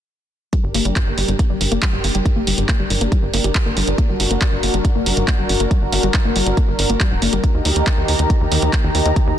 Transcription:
0.53 synth arpeggio sound G3, analog synth pad D4 G4 A#4, kick, closed hi-hat
0.64 analog synth bass G1, synth arpeggio sound G2
0.74 analog synth bass G1, synth arpeggio sound A#3, open hi-hat
0.85 analog synth bass G1, synth arpeggio sound G3, closed hi-hat
0.96 synth arpeggio sound G2, kick, clap, closed hi-hat
1.07 analog synth bass G1, synth arpeggio sound A#3
1.18 analog synth bass G1, synth arpeggio sound G3, open hi-hat
1.28 analog synth bass G1, synth arpeggio sound G2, closed hi-hat
1.39 synth arpeggio sound A#3, kick, closed hi-hat
1.50 analog synth bass G1, synth arpeggio sound G3
1.61 analog synth bass G1, synth arpeggio sound G2, open hi-hat
1.72 analog synth bass G1, synth arpeggio sound A#3, closed hi-hat
1.82 synth arpeggio sound G3, kick, clap, closed hi-hat
1.93 analog synth bass G1, synth arpeggio sound G2
2.04 analog synth bass G1, synth arpeggio sound A#3, open hi-hat
2.15 analog synth bass G1, synth arpeggio sound G3, closed hi-hat
2.26 synth arpeggio sound G2, kick, closed hi-hat
2.36 analog synth bass G1, synth arpeggio sound A#3
2.47 analog synth bass G1, synth arpeggio sound G3, open hi-hat
2.58 analog synth bass G1, synth arpeggio sound G2, closed hi-hat
2.69 synth arpeggio sound A#3, kick, clap, closed hi-hat
2.80 analog synth bass G1, synth arpeggio sound G3
2.90 analog synth bass G1, synth arpeggio sound G2, open hi-hat
3.01 analog synth bass G1, synth arpeggio sound A#3, closed hi-hat
3.12 synth arpeggio sound G3, kick, closed hi-hat
3.23 analog synth bass G1, synth arpeggio sound G2
3.34 analog synth bass G1, synth arpeggio sound A#3, open hi-hat
3.44 analog synth bass G1, synth arpeggio sound G3, closed hi-hat
3.55 synth arpeggio sound G2, kick, clap, closed hi-hat
3.66 analog synth bass G1, synth arpeggio sound A#3
3.77 analog synth bass G1, synth arpeggio sound G3, open hi-hat
3.88 analog synth bass G1, synth arpeggio sound G2, closed hi-hat
3.98 synth arpeggio sound A#3, analog synth pad F#4, kick, closed hi-hat
4.09 analog synth bass G1, synth arpeggio sound G3
4.20 analog synth bass G1, synth arpeggio sound G2, open hi-hat
4.31 analog synth bass G1, synth arpeggio sound A#3, closed hi-hat
4.41 synth arpeggio sound G3, kick, clap, closed hi-hat
4.52 analog synth bass G1, synth arpeggio sound G2
4.63 analog synth bass G1, synth arpeggio sound A#3, open hi-hat
4.74 analog synth bass G1, synth arpeggio sound G3, closed hi-hat
4.85 synth arpeggio sound G2, kick, closed hi-hat
4.95 analog synth bass G1, synth arpeggio sound A#3
5.06 analog synth bass G1, synth arpeggio sound G3, open hi-hat
5.17 analog synth bass G1, synth arpeggio sound G2, closed hi-hat
5.28 synth arpeggio sound A#3, kick, clap, closed hi-hat
5.39 analog synth bass G1, synth arpeggio sound G3
5.49 analog synth bass G1, synth arpeggio sound G2, open hi-hat
5.60 analog synth bass G1, synth arpeggio sound A#3, closed hi-hat
5.71 synth arpeggio sound G3, kick, closed hi-hat
5.82 analog synth bass G1, synth arpeggio sound G2
5.92 analog synth bass G1, synth arpeggio sound A#3, open hi-hat
6.03 analog synth bass G1, synth arpeggio sound G3, closed hi-hat
6.14 synth arpeggio sound G2, kick, clap, closed hi-hat
6.25 analog synth bass G1, synth arpeggio sound A#3
6.36 analog synth bass G1, synth arpeggio sound G3, open hi-hat
6.46 analog synth bass G1, synth arpeggio sound G2, closed hi-hat
6.57 synth arpeggio sound A#3, kick, closed hi-hat
6.68 analog synth bass G1, synth arpeggio sound G3
6.79 analog synth bass G1, synth arpeggio sound G2, open hi-hat
6.90 analog synth bass G1, synth arpeggio sound A#3, closed hi-hat
7.00 synth arpeggio sound G3, kick, clap, closed hi-hat
7.11 analog synth bass D1, synth arpeggio sound G2
7.22 analog synth bass G1, synth arpeggio sound A#3, open hi-hat
7.33 analog synth bass G1, synth arpeggio sound G3, closed hi-hat
7.44 synth arpeggio sound D#2, analog synth pad D#3 D#4 G4 A#5, kick, closed hi-hat
7.55 analog synth bass D#2, synth arpeggio sound D#3
7.65 analog synth bass D#2, synth arpeggio sound D#3, open hi-hat
7.76 synth arpeggio sound D#2, analog synth bass D#2, closed hi-hat
7.87 synth arpeggio sound D#3, kick, clap, closed hi-hat
7.98 analog synth bass D#2, synth arpeggio sound D#3
8.08 synth arpeggio sound D#2, analog synth bass D#2, open hi-hat
8.19 analog synth bass D#2, synth arpeggio sound D#3, closed hi-hat
8.30 synth arpeggio sound D#3, kick, closed hi-hat
8.41 synth arpeggio sound D#2, analog synth bass D#2
8.52 analog synth bass D#2, synth arpeggio sound D#3, open hi-hat
8.62 analog synth bass D#2, synth arpeggio sound D#3, closed hi-hat
8.73 synth arpeggio sound D#2, kick, clap, closed hi-hat
8.84 analog synth bass D#2, synth arpeggio sound D#3
8.95 analog synth bass D#2, synth arpeggio sound D#3, open hi-hat
9.06 analog synth bass D#2, synth arpeggio sound D#2, closed hi-hat
9.16 synth arpeggio sound D#3, kick, closed hi-hat
9.27 analog synth bass D#2, synth arpeggio sound D#3

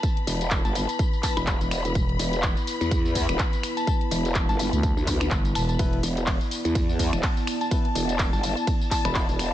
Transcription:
Already playing: analog synth pad B3 E4 B4, synth bell A5, string section B5
0.03 kick, closed hi-hat, tambourine
0.17 closed hi-hat
0.27 wobble bass E1, open hi-hat, tambourine
0.41 closed hi-hat, tambourine
0.51 kick, clap, closed hi-hat, tambourine
0.65 wobble bass G1, synth bell A5, closed hi-hat, tambourine
0.75 open hi-hat, tambourine
0.89 closed hi-hat, tambourine
0.99 kick, closed hi-hat, tambourine
1.13 tambourine
1.23 synth bell A5, kick, clap, open hi-hat, tambourine
1.37 wobble bass E1, synth bell B5, finger snap, closed hi-hat, tambourine
1.47 synth bell B5, kick, clap, closed hi-hat, tambourine
1.61 wobble bass E1, closed hi-hat, tambourine
1.71 finger snap, open hi-hat, tambourine
1.85 closed hi-hat, tambourine
1.95 fm bass E1, kick, closed hi-hat, tambourine
2.09 closed hi-hat
2.19 wobble bass E1, open hi-hat, tambourine
2.33 closed hi-hat, tambourine
2.43 kick, clap, closed hi-hat, tambourine
2.57 closed hi-hat, tambourine
2.67 open hi-hat, tambourine
2.81 wobble bass E2, closed hi-hat, tambourine
2.91 kick, closed hi-hat, tambourine
3.05 tambourine
3.15 kick, open hi-hat, tambourine
3.29 wobble bass E1, finger snap, closed hi-hat, tambourine
3.39 kick, clap, closed hi-hat, tambourine
3.53 closed hi-hat, tambourine
3.63 finger snap, open hi-hat, tambourine
3.77 synth bell A5, closed hi-hat, tambourine
3.87 kick, closed hi-hat, tambourine
4.01 closed hi-hat
4.11 wobble bass E1, open hi-hat, tambourine
4.25 closed hi-hat, tambourine
4.35 kick, clap, closed hi-hat, tambourine
4.49 wobble bass G1, synth bell A5, closed hi-hat, tambourine
4.59 open hi-hat, tambourine
4.73 fm bass D2, closed hi-hat, tambourine
4.83 kick, closed hi-hat, tambourine
4.97 wobble bass D2, tambourine
5.07 kick, clap, open hi-hat, tambourine
5.21 finger snap, closed hi-hat, tambourine
5.31 fm bass G1, kick, clap, closed hi-hat, tambourine
5.45 closed hi-hat, tambourine
5.55 fm bass E1, synth bell A5, finger snap, open hi-hat, tambourine
5.69 synth bell A5, closed hi-hat, tambourine
5.79 fm bass E1, grand piano B3 E4 B4, analog synth pad D5, kick, closed hi-hat, ride, tambourine
5.93 closed hi-hat
6.03 wobble bass E1, open hi-hat, tambourine
6.17 closed hi-hat, tambourine
6.27 kick, clap, closed hi-hat, ride, tambourine
6.41 closed hi-hat, tambourine
6.51 open hi-hat, tambourine
6.65 wobble bass E2, string section A5, closed hi-hat, tambourine
6.75 kick, closed hi-hat, ride, tambourine
6.89 tambourine
6.99 kick, open hi-hat, tambourine
7.13 wobble bass E1, finger snap, closed hi-hat, tambourine
7.23 kick, clap, closed hi-hat, ride, tambourine
7.37 closed hi-hat, tambourine
7.47 finger snap, open hi-hat, tambourine
7.61 synth bell A5, closed hi-hat, tambourine
7.71 grand piano B3 E4 B4, kick, closed hi-hat, ride, tambourine
7.85 closed hi-hat
7.95 wobble bass E1, open hi-hat, tambourine
8.09 closed hi-hat, tambourine
8.19 kick, clap, closed hi-hat, ride, tambourine
8.33 wobble bass G1, synth bell A5, closed hi-hat, tambourine
8.43 open hi-hat, tambourine
8.57 closed hi-hat, tambourine
8.67 kick, closed hi-hat, ride, tambourine
8.81 tambourine
8.91 synth bell A5, kick, clap, open hi-hat, tambourine
9.05 wobble bass E1, synth bell B5, finger snap, closed hi-hat, tambourine
9.15 synth bell B5, kick, clap, closed hi-hat, ride, tambourine
9.29 wobble bass E1, closed hi-hat, tambourine
9.39 finger snap, open hi-hat, tambourine

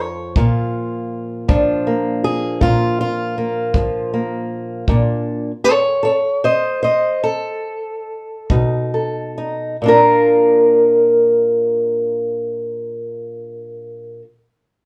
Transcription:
Already playing: steel-string acoustic guitar F2 F3 A3
0.00 steel-string acoustic guitar C#5
0.36 steel-string acoustic guitar A#2 F4, kick
1.48 steel-string acoustic guitar F3 D4, kick
1.87 steel-string acoustic guitar A#3
2.24 steel-string acoustic guitar G#4
2.61 steel-string acoustic guitar A#2 F4, kick
3.01 steel-string acoustic guitar F4
3.38 steel-string acoustic guitar A#3
3.74 steel-string acoustic guitar F3, kick
4.14 steel-string acoustic guitar A#3
4.88 steel-string acoustic guitar A#2 D4, kick
5.64 steel-string acoustic guitar A4 C#5
6.03 steel-string acoustic guitar A4 C#5
6.44 steel-string acoustic guitar C5 D#5
6.83 steel-string acoustic guitar C5 D#5
7.24 steel-string acoustic guitar A4
8.50 steel-string acoustic guitar B2 D#4, kick
8.94 steel-string acoustic guitar A4
9.38 steel-string acoustic guitar D#4
9.82 steel-string acoustic guitar A#2 A#3
9.86 steel-string acoustic guitar D4 F4 A#4

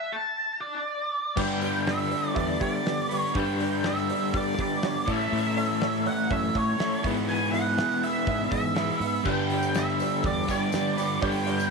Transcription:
Already playing: lead electric guitar E5
0.12 lead electric guitar A5
0.61 lead electric guitar D5
1.36 overdriven electric guitar G2 D3 G3 B3 D4 B4, fingered electric bass G2, upright piano G4 B4 D5, lead electric guitar G5, kick, crash
1.61 upright piano G4 B4 D5, open hi-hat
1.86 upright piano G4 B4 D5, lead electric guitar E5, snare, open hi-hat
2.10 upright piano G4 B4 D5, open hi-hat
2.34 fingered electric bass E2, upright piano G4 B4 E5, lead electric guitar D5, kick, open hi-hat
2.59 fingered electric bass G3, upright piano G4 B4 E5, lead electric guitar D5, kick, open hi-hat
2.85 upright piano G4 B4 D5, snare, open hi-hat
3.09 overdriven electric guitar G3 B3 D4 B4, upright piano G4 B4 D5, open hi-hat
3.14 lead electric guitar C#5
3.34 overdriven electric guitar G2 D3 G3 B3 D4 B4, fingered electric bass G2, upright piano G4 B4 D5, lead electric guitar G5, kick, open hi-hat
3.60 upright piano G4 B4 D5, open hi-hat
3.84 upright piano G4 B4 D5, lead electric guitar E5, snare, open hi-hat
3.97 snare
4.09 upright piano G4 B4 D5, open hi-hat
4.34 fingered electric bass G2, upright piano G4 B4 D5, lead electric guitar D5, kick, open hi-hat
4.59 fingered electric bass G3, upright piano G4 B4 D5, lead electric guitar D5, kick, open hi-hat
4.83 upright piano G4 B4 C#5, snare, open hi-hat
5.05 overdriven electric guitar A2 E3 A3 C#4 E4 A4, fingered electric bass A2, upright piano A4 C#5 E5, kick, open hi-hat
5.11 lead electric guitar E5
5.32 fingered electric bass A2, open hi-hat
5.57 upright piano A4 C#5 E5, open hi-hat
5.81 upright piano A4 C#5 E5, snare, open hi-hat
5.94 snare
6.06 upright piano A4 C#5 E5, lead electric guitar F#5, open hi-hat
6.30 fingered electric bass F#2, upright piano A4 C#5 E5, lead electric guitar E5, kick, open hi-hat
6.55 fingered electric bass A2, upright piano A4 C#5 E5, lead electric guitar C#5, kick, open hi-hat
6.77 overdriven electric guitar A2 A3 C#4 E4 A4, upright piano A4 C#5, snare, open hi-hat
6.81 upright piano E5
7.02 overdriven electric guitar E2 B2 G#3 B3 E4 B4, fingered electric bass G#2, upright piano G#4 B4 E5, kick, open hi-hat
7.06 overdriven electric guitar E3
7.29 lead electric guitar G#5, open hi-hat
7.51 upright piano G#4 B4 E5, lead electric guitar F#5, open hi-hat
7.77 upright piano G#4 B4 E5, snare, open hi-hat
7.91 snare
8.03 upright piano G#4 B4 E5, lead electric guitar E5, open hi-hat
8.27 fingered electric bass G#2, upright piano G#4 B4 E5, kick, open hi-hat
8.51 fingered electric bass G#2, upright piano G#4 B4 E5, lead electric guitar E5, kick, open hi-hat
8.75 overdriven electric guitar G#3 B3 E4 B4, upright piano G#4 B4 E5, snare, open hi-hat
9.00 fingered electric bass G#2, upright piano G#4 B4 E5, open hi-hat
9.24 overdriven electric guitar G2 D3 G3 B3 D4 B4, fingered electric bass G2, upright piano G4 B4 D5, lead electric guitar G5, kick, crash
9.50 upright piano G4 B4 D5, open hi-hat
9.63 tambourine
9.74 upright piano G4 B4 E5, lead electric guitar E5, snare, open hi-hat, tambourine
9.88 snare
9.99 upright piano G4 B4 D5, open hi-hat, tambourine
10.23 fingered electric bass E2, upright piano G4 B4 D5, lead electric guitar D5, kick, open hi-hat, tambourine
10.47 overdriven electric guitar G2 D3 G3, fingered electric bass G3, upright piano G4 B4 D5, lead electric guitar D5, kick, open hi-hat, tambourine
10.71 overdriven electric guitar G2 D3 G3, upright piano G4 B4 D5, snare, open hi-hat, tambourine
10.97 overdriven electric guitar G3 B3 D4 B4, upright piano G4 B4 D5, open hi-hat, tambourine
11.11 tambourine
11.21 overdriven electric guitar G2 D3 G3 B3 D4 B4, fingered electric bass G2, upright piano G4 B4 C#5, lead electric guitar G5, kick, open hi-hat
11.47 upright piano G4 B4 C#5, open hi-hat
11.60 tambourine

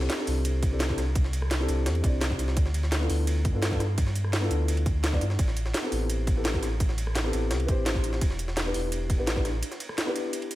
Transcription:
Already playing: felt piano C4 D4 E4 G4 A4
0.01 snare
0.10 snare, closed hi-hat, ride
0.16 felt piano C4 D4 E4 G4, snare
0.21 felt piano A4
0.27 sub bass C2, closed hi-hat, open hi-hat
0.45 closed hi-hat, ride
0.62 kick, closed hi-hat, ride
0.70 felt piano C4 D4 E4 G4 A4
0.80 snare, closed hi-hat, ride
0.88 felt piano C4 D4 E4 G4 A4, kick, snare
0.98 cross-stick, snare, closed hi-hat, ride
1.15 kick, closed hi-hat, ride
1.24 snare
1.33 closed hi-hat, ride
1.42 cross-stick
1.51 snare, closed hi-hat, ride
1.58 felt piano C4 D4 E4 G4, cross-stick, snare
1.62 felt piano A4
1.68 sub bass C2, closed hi-hat, ride
1.86 sub bass E2, snare, closed hi-hat, ride
1.95 ride
2.01 sub bass C2, felt piano C4 D4 E4 G4, kick, closed hi-hat, ride
2.06 felt piano D5
2.21 snare, closed hi-hat, ride
2.30 kick, snare
2.39 closed hi-hat, ride
2.48 snare
2.57 sub bass D2, kick, closed hi-hat, ride
2.66 snare
2.74 closed hi-hat, ride
2.83 snare
2.92 snare, closed hi-hat, ride
2.99 felt piano B3 D4 E4 F4, snare
3.03 felt piano A4
3.10 sub bass D2, closed hi-hat, open hi-hat
3.27 closed hi-hat, ride
3.45 kick, closed hi-hat, ride
3.53 sub bass G2, felt piano B3 D4 E4 F4 A4
3.62 snare, closed hi-hat, ride
3.70 felt piano B3 D4 E4 F4 A4, kick, snare
3.80 cross-stick, snare, closed hi-hat, ride
3.98 kick, closed hi-hat, ride
4.07 snare
4.16 closed hi-hat, ride
4.24 cross-stick
4.33 snare, closed hi-hat, ride
4.40 felt piano B3 D4 E4 F4, cross-stick, snare
4.44 felt piano A4
4.51 sub bass D2, closed hi-hat, ride
4.68 closed hi-hat, ride
4.77 ride
4.86 kick, closed hi-hat, ride
5.04 snare, closed hi-hat, ride
5.12 felt piano B3 D4 E4 F4 D5, kick, snare
5.21 sub bass G2, closed hi-hat, ride
5.30 snare
5.39 sub bass A1, kick, closed hi-hat, ride
5.48 snare
5.57 closed hi-hat, ride
5.66 snare
5.74 snare, closed hi-hat, ride
5.81 felt piano B3 C4 E4 G4, snare
5.85 felt piano A4
5.92 sub bass A1, closed hi-hat, open hi-hat
6.10 closed hi-hat, ride
6.27 kick, closed hi-hat, ride
6.35 felt piano B3 C4 E4 G4 A4
6.45 snare, closed hi-hat, ride
6.53 felt piano B3 C4 E4 G4 A4, kick, snare
6.63 cross-stick, snare, closed hi-hat, ride
6.80 kick, closed hi-hat, ride
6.89 snare
6.98 closed hi-hat, ride
7.07 cross-stick
7.15 snare, closed hi-hat, ride
7.22 felt piano B3 C4 E4 G4, cross-stick, snare
7.27 felt piano A4
7.33 sub bass A1, closed hi-hat, ride
7.51 sub bass C2, snare, closed hi-hat, ride
7.60 ride
7.66 sub bass A1, felt piano C4 E4 G4 B4, kick, closed hi-hat, ride
7.71 felt piano C5
7.86 snare, closed hi-hat, ride
7.95 kick, snare
8.04 closed hi-hat, ride
8.13 snare
8.21 sub bass E1, kick, closed hi-hat, ride
8.30 snare
8.39 closed hi-hat, ride
8.48 snare
8.57 snare, closed hi-hat, ride
8.63 felt piano B3 D4 E4 G4, snare
8.68 felt piano B4
8.74 sub bass E1, closed hi-hat, open hi-hat
8.92 closed hi-hat, ride
9.10 kick, closed hi-hat, ride
9.17 sub bass A1, felt piano B3 D4 E4 G4 B4
9.27 snare, closed hi-hat, ride
9.35 felt piano B3 D4 E4 G4 B4, kick, snare
9.45 cross-stick, snare, closed hi-hat, ride
9.63 closed hi-hat, ride
9.71 snare, closed hi-hat
9.80 closed hi-hat, ride
9.89 cross-stick
9.98 snare, closed hi-hat, ride
10.05 felt piano B3 D4 E4 G4, cross-stick, snare
10.09 felt piano B4
10.16 closed hi-hat, ride
10.33 closed hi-hat, ride
10.42 ride
10.51 closed hi-hat, ride

